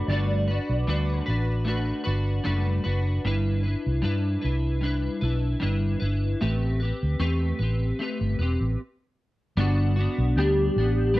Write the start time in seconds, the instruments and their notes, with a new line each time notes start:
0.08 fingered electric bass G1, clean electric guitar G3 A3 D4 F#4 D5
0.13 clean electric guitar B4
0.48 clean electric guitar F#4 B4
0.52 clean electric guitar D4
0.69 fingered electric bass B1
0.87 fingered electric bass D2, clean electric guitar G3 A3 D4 F#4 B4
1.26 fingered electric bass A1, clean electric guitar D4 F#4 B4
1.65 clean electric guitar A3 D4 F#4
1.69 clean electric guitar B4
2.04 fingered electric bass G1, clean electric guitar D4 F#4 B4
2.44 fingered electric bass F#1, clean electric guitar G3 A3 D4 F#4 B4
2.84 fingered electric bass F#1, clean electric guitar D4 F#4 B4
3.25 fingered electric bass G1, clean electric guitar G3 D4 E4 B4
3.63 clean electric guitar E4 B4
3.68 clean electric guitar D4
3.86 fingered electric bass C2
4.02 fingered electric bass G2, clean electric guitar G3 D4 E4 B4
4.42 fingered electric bass C2, clean electric guitar D4 E4 B4
4.81 clean electric guitar G3 D4 E4
4.85 clean electric guitar B4
5.21 fingered electric bass B1, clean electric guitar D4 E4 B4
5.60 fingered electric bass G1, clean electric guitar G3 D4 E4 B4
6.00 fingered electric bass G1, clean electric guitar E4 B4
6.04 clean electric guitar D4
6.41 fingered electric bass A1, clean electric guitar A3 C4 G4 B4
6.80 clean electric guitar G4 B4
6.84 clean electric guitar C4
7.03 fingered electric bass D2
7.19 fingered electric bass E2, clean electric guitar A3 C4 G4 B4
7.59 fingered electric bass A1, clean electric guitar G4 B4
7.63 clean electric guitar C4
7.99 clean electric guitar A3 C4 G4
8.03 clean electric guitar B4
8.21 fingered electric bass G1
8.39 fingered electric bass E1, clean electric guitar C4 G4 B4
8.61 fingered electric bass A1
9.57 fingered electric bass G1, clean electric guitar G3 B3 D4 F#4
9.96 clean electric guitar D4 F#4
10.01 clean electric guitar B3
10.18 fingered electric bass B1
10.36 fingered electric bass D2, clean electric guitar G3 B3 D4 G4
10.76 fingered electric bass A1, clean electric guitar B3 D4
11.14 clean electric guitar G3 B3 B4